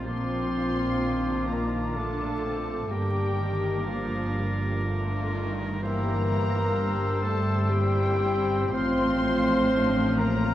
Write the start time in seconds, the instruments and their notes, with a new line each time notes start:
0.06 double bass section A#1, cello section A#2, viola section F3 A#3, french horn section C4, violin section D4 F4 C6, oboe F4, clarinet C5, flute D6
0.56 viola section A#3
1.03 viola section D#3
1.47 french horn section A#3, clarinet A#4, violin section A#5
1.95 viola section D3 D4, french horn section A3, violin section F4 A5, clarinet A4
2.44 viola section C4
2.90 double bass section G1, cello section G2, viola section D3 A#3, french horn section G3, violin section D4 G4 G5, clarinet G4, oboe A#4
3.39 viola section D#3
3.87 viola section F3, french horn section F3, violin section D4 F5, clarinet F4
4.36 viola section G3
4.86 viola section D3 A3, violin section D4 F4
5.35 viola section D#3
5.82 viola section E3 G3, french horn section A#3, violin section E4 G4 A#5, clarinet A#4, oboe C5, flute E6
6.30 violin section G4
6.77 viola section G3, violin section D4
7.22 french horn section A3, violin section C4 A5, clarinet A4
7.69 french horn section G3, viola section A#3, violin section E4 G5, clarinet G4
8.21 viola section C4
8.73 double bass section A1, cello section A2, viola section F3 C4, french horn section C4, violin section C4 F4 C6, clarinet C5, flute F6
9.24 viola section A3
9.71 viola section F3, violin section D4 F4
10.19 french horn section A#3, violin section C4 A#5, clarinet A#4